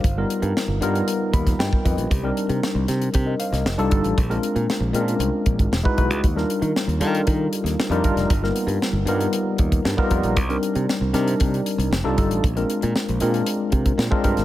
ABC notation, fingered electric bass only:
X:1
M:4/4
L:1/16
Q:1/4=116
K:Gphr
V:1 name="Fingered electric bass" clef=bass
G,,,2 z G,, z G,,, G,,2 z2 ^D,,2 G,, z F,, ^A,,, | C,,2 z C, z C,, C,2 C,2 z C,, F,,, C,, G,,, =A,,, | B,,,2 z B,, z B,,, B,,2 C,, z B,,, A,,, =E,,, z =B,,, _D,, | E,,2 z E, z E,, E,2 E,2 z E,, z F,, G,,, F,,, |
G,,,2 z G,, z G,,, G,,2 z2 ^D,,2 G,, z F,, ^A,,, | C,,2 z C, z C,, C,2 C,2 z C,, F,,, C,, G,,, =A,,, | B,,,2 z B,, z B,,, B,,2 z2 C,2 B,, z G,, A,,, |]